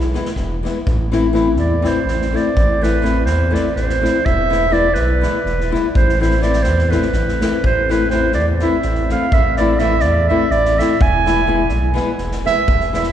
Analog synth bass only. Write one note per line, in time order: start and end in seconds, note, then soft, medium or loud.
0.00 0.17 B1 medium
0.37 0.67 E1 medium
0.88 1.56 A1 loud
1.55 1.86 E2 loud
2.05 2.36 A1 medium
2.56 3.27 A1 loud
3.25 3.55 E2 loud
3.76 4.06 A1 medium
4.26 4.97 E1 loud
4.95 5.25 B1 loud
5.45 5.75 E1 medium
5.96 6.68 A1 loud
6.66 6.95 E2 loud
7.14 7.44 A1 medium
7.65 8.36 A1 loud
8.35 8.64 E2 medium
8.84 9.14 A1 medium
9.34 10.03 A1 medium
10.01 10.31 E2 loud
10.51 10.81 A1 loud
11.01 11.71 E1 loud
11.69 11.99 B1 loud
12.19 12.49 E1 medium
12.68 13.12 E1 loud